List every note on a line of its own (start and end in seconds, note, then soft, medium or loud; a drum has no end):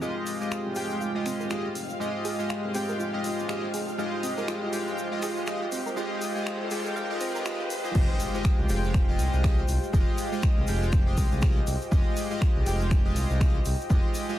0.00 0.11 F1 loud
0.00 0.37 G#3 medium
0.00 7.91 G#3 medium
0.00 1.70 C4 medium
0.00 0.37 F4 medium
0.00 0.12 F4 medium
0.00 14.39 F4 medium
0.00 0.80 G4 medium
0.00 0.38 G4 medium
0.00 7.91 G4 medium
0.00 7.91 D#5 medium
0.00 0.38 D#5 medium
0.00 7.96 F5 medium
0.00 1.16 D6 medium
0.00 riser medium
0.00 shaker soft
0.27 open hi-hat loud
0.27 shaker loud
0.37 0.73 G#3 medium
0.37 14.39 C5 medium
0.41 0.74 F4 medium
0.41 0.74 G4 medium
0.41 0.74 D#5 medium
0.41 shaker soft
0.52 finger snap loud
0.52 shaker medium
0.66 0.72 C2 loud
0.66 14.39 G5 medium
0.76 1.32 F1 loud
0.76 1.12 G#3 medium
0.76 1.12 F4 medium
0.76 1.12 G4 medium
0.76 0.83 G#4 loud
0.76 1.12 G5 loud
0.76 open hi-hat medium
0.76 shaker medium
0.90 shaker soft
1.01 1.05 F5 loud
1.01 shaker medium
1.15 1.48 G#3 medium
1.15 1.48 F4 medium
1.15 1.48 G4 medium
1.15 1.48 D#5 medium
1.26 1.36 C4 medium
1.26 finger snap soft
1.26 open hi-hat loud
1.26 shaker medium
1.40 1.47 D#1 medium
1.40 1.45 A#4 medium
1.40 shaker soft
1.50 1.68 D#1 loud
1.50 1.67 G#3 loud
1.50 1.67 F4 medium
1.50 1.61 F4 medium
1.50 1.67 G4 medium
1.50 1.67 D#5 loud
1.50 finger snap loud
1.50 shaker medium
1.75 1.93 F1 medium
1.75 open hi-hat medium
1.75 shaker medium
1.89 shaker soft
2.00 2.09 F1 loud
2.00 2.35 G#3 medium
2.00 2.36 F4 medium
2.00 2.36 G4 medium
2.00 2.36 D#5 medium
2.00 shaker medium
2.25 2.32 G#4 loud
2.25 open hi-hat loud
2.25 shaker medium
2.39 2.72 G#3 medium
2.39 2.72 F4 medium
2.39 2.72 G4 medium
2.39 2.72 D#5 medium
2.39 shaker soft
2.50 2.54 F5 loud
2.50 finger snap loud
2.50 shaker medium
2.64 2.71 C2 loud
2.74 3.30 F1 loud
2.74 3.10 G#3 medium
2.74 2.85 C4 medium
2.74 3.10 F4 medium
2.74 3.10 G4 medium
2.74 3.10 G5 loud
2.74 open hi-hat medium
2.74 shaker medium
2.89 2.94 A#4 medium
2.89 shaker soft
2.99 3.09 F4 medium
2.99 shaker soft
3.13 3.46 G#3 medium
3.13 3.46 F4 medium
3.13 3.46 G4 medium
3.13 3.47 D#5 medium
3.24 open hi-hat loud
3.24 shaker medium
3.39 3.45 D#1 medium
3.39 shaker soft
3.48 3.66 D#1 loud
3.48 3.65 G#3 loud
3.48 3.65 F4 medium
3.48 3.65 G4 medium
3.48 3.65 D#5 loud
3.48 finger snap loud
3.48 shaker medium
3.74 3.91 F1 loud
3.74 3.80 G#4 loud
3.74 open hi-hat loud
3.74 shaker loud
3.88 shaker soft
3.98 4.08 F1 loud
3.98 4.34 G#3 medium
3.98 4.34 F4 medium
3.98 4.34 G4 medium
3.98 4.34 D#5 medium
3.98 4.03 F5 loud
3.98 shaker medium
4.23 4.33 C4 medium
4.23 open hi-hat loud
4.23 shaker loud
4.37 4.70 G#3 medium
4.37 4.70 F4 medium
4.37 4.70 G4 medium
4.37 4.43 A#4 medium
4.37 4.71 D#5 medium
4.37 shaker soft
4.48 4.58 F4 medium
4.48 finger snap loud
4.48 shaker medium
4.62 4.69 C2 loud
4.72 5.29 F1 loud
4.72 5.08 G#3 medium
4.72 5.08 F4 medium
4.72 5.09 G4 medium
4.72 5.09 G5 loud
4.72 open hi-hat loud
4.72 shaker loud
4.87 shaker soft
4.98 shaker medium
5.11 5.44 G#3 medium
5.11 5.45 F4 medium
5.11 5.45 G4 medium
5.11 5.45 D#5 medium
5.22 5.29 G#4 loud
5.22 finger snap soft
5.22 open hi-hat loud
5.22 shaker loud
5.37 5.44 D#1 medium
5.37 shaker soft
5.47 5.65 D#1 loud
5.47 5.63 G#3 loud
5.47 5.63 F4 medium
5.47 5.64 G4 medium
5.47 5.64 D#5 loud
5.47 5.51 F5 loud
5.47 finger snap loud
5.47 shaker medium
5.72 5.89 F1 medium
5.72 5.82 C4 medium
5.72 open hi-hat loud
5.72 shaker medium
5.86 5.91 A#4 medium
5.86 shaker soft
5.96 6.06 F1 loud
5.96 6.32 G#3 medium
5.96 6.32 F4 medium
5.96 6.07 F4 medium
5.96 6.32 G4 medium
5.96 6.33 D#5 medium
5.96 shaker medium
6.22 open hi-hat loud
6.22 shaker loud
6.35 6.68 G#3 medium
6.35 6.69 F4 medium
6.35 6.69 G4 medium
6.35 6.69 D#5 medium
6.35 shaker soft
6.47 finger snap loud
6.47 shaker medium
6.61 6.67 C2 loud
6.70 7.27 F1 loud
6.70 7.06 G#3 medium
6.70 7.07 F4 medium
6.70 7.07 G4 medium
6.70 6.78 G#4 loud
6.70 7.07 G5 loud
6.70 open hi-hat loud
6.70 shaker medium
6.85 shaker soft
6.96 7.00 F5 loud
6.96 shaker medium
7.10 7.32 G#3 medium
7.10 7.32 F4 medium
7.10 7.32 G4 medium
7.10 7.32 D#5 medium
7.21 7.31 C4 medium
7.21 open hi-hat loud
7.21 shaker medium
7.34 7.42 D#1 medium
7.34 7.44 G#3 medium
7.34 7.44 F4 medium
7.34 7.44 G4 medium
7.34 7.40 A#4 medium
7.34 7.44 D#5 medium
7.34 shaker soft
7.45 7.63 D#1 loud
7.45 7.62 G#3 medium
7.45 7.62 F4 medium
7.45 7.56 F4 medium
7.45 7.62 G4 medium
7.45 7.62 D#5 medium
7.45 finger snap loud
7.45 shaker medium
7.70 7.88 F1 loud
7.70 open hi-hat loud
7.70 shaker loud
7.84 7.92 G#3 medium
7.84 7.93 F4 medium
7.84 7.93 G4 medium
7.84 7.93 D#5 medium
7.84 shaker soft
7.95 8.04 F1 loud
7.95 8.31 G#3 medium
7.95 14.39 G#3 medium
7.95 8.31 F4 medium
7.95 14.39 G4 medium
7.95 8.31 G4 medium
7.95 14.39 D#5 loud
7.95 kick loud
7.95 crash loud
7.95 impact medium
7.95 shaker soft
8.20 open hi-hat loud
8.20 shaker loud
8.34 8.67 G#3 medium
8.34 8.67 F4 medium
8.34 8.67 G4 medium
8.34 8.67 D#5 medium
8.34 shaker soft
8.45 finger snap loud
8.45 kick loud
8.45 shaker medium
8.59 8.66 C2 loud
8.69 9.18 F1 loud
8.69 9.05 G#3 medium
8.69 9.05 F4 medium
8.69 9.05 G4 medium
8.69 9.06 G5 loud
8.69 open hi-hat medium
8.69 shaker medium
8.84 shaker soft
8.94 finger snap medium
8.94 kick loud
8.94 shaker medium
9.08 9.41 G#3 medium
9.08 9.41 F4 medium
9.08 9.42 G4 medium
9.08 9.42 D#5 medium
9.19 9.28 C2 medium
9.19 open hi-hat loud
9.19 shaker medium
9.33 9.63 C2 loud
9.33 shaker soft
9.43 9.60 G#3 loud
9.43 9.60 F4 medium
9.43 9.60 G4 medium
9.43 9.60 D#5 loud
9.43 finger snap loud
9.43 kick loud
9.43 shaker soft
9.68 9.78 C2 medium
9.68 open hi-hat loud
9.68 shaker medium
9.83 shaker soft
9.93 10.03 F1 loud
9.93 10.29 G#3 medium
9.93 10.29 F4 medium
9.93 10.29 G4 medium
9.93 10.29 D#5 medium
9.93 kick loud
9.93 shaker medium
10.18 open hi-hat loud
10.18 shaker medium
10.32 10.65 G#3 medium
10.32 10.65 F4 medium
10.32 10.65 G4 medium
10.32 10.66 D#5 medium
10.32 shaker soft
10.42 finger snap loud
10.42 kick loud
10.42 shaker medium
10.57 10.64 C2 loud
10.67 11.17 F1 loud
10.67 11.03 G#3 medium
10.67 11.03 F4 medium
10.67 11.04 G4 medium
10.67 11.04 G5 loud
10.67 open hi-hat loud
10.67 shaker medium
10.83 shaker soft
10.92 finger snap medium
10.92 kick loud
10.92 shaker medium
11.06 11.39 G#3 medium
11.06 11.40 F4 medium
11.06 11.40 G4 medium
11.06 11.40 D#5 medium
11.17 11.27 C2 medium
11.17 kick medium
11.17 open hi-hat loud
11.17 shaker loud
11.32 11.61 C2 loud
11.32 shaker soft
11.42 11.58 G#3 loud
11.42 11.58 F4 medium
11.42 11.59 G4 medium
11.42 11.59 D#5 loud
11.42 finger snap loud
11.42 kick loud
11.42 shaker medium
11.67 11.76 C2 medium
11.67 open hi-hat loud
11.67 shaker loud
11.81 shaker soft
11.91 12.01 F1 loud
11.91 12.27 G#3 medium
11.91 12.27 F4 medium
11.91 12.28 G4 medium
11.91 12.28 D#5 medium
11.91 kick loud
11.91 shaker medium
12.17 open hi-hat loud
12.17 shaker loud
12.30 12.63 G#3 medium
12.30 12.64 F4 medium
12.30 12.64 G4 medium
12.30 12.64 D#5 medium
12.30 shaker soft
12.41 finger snap loud
12.41 kick loud
12.41 shaker medium
12.56 12.63 C2 loud
12.66 13.15 F1 loud
12.66 13.02 G#3 medium
12.66 13.02 F4 medium
12.66 13.02 G4 medium
12.66 13.02 G5 loud
12.66 open hi-hat loud
12.66 shaker medium
12.81 shaker soft
12.91 finger snap medium
12.91 kick loud
12.91 shaker medium
13.05 13.38 G#3 medium
13.05 13.38 F4 medium
13.05 13.38 G4 medium
13.05 13.38 D#5 medium
13.16 13.25 C2 medium
13.16 open hi-hat loud
13.16 shaker loud
13.30 13.60 C2 loud
13.30 shaker soft
13.40 13.57 G#3 loud
13.40 13.57 F4 medium
13.40 13.57 G4 medium
13.40 13.57 D#5 loud
13.40 finger snap loud
13.40 kick loud
13.40 shaker medium
13.65 13.75 C2 medium
13.65 open hi-hat loud
13.65 shaker loud
13.81 shaker soft
13.90 14.00 F1 loud
13.90 14.26 G#3 medium
13.90 14.26 F4 medium
13.90 14.26 G4 medium
13.90 14.26 D#5 medium
13.90 kick loud
13.90 shaker soft
14.15 open hi-hat loud
14.15 shaker loud
14.29 14.39 G#3 medium
14.29 14.39 F4 medium
14.29 14.39 G4 medium
14.29 14.39 D#5 medium
14.29 shaker soft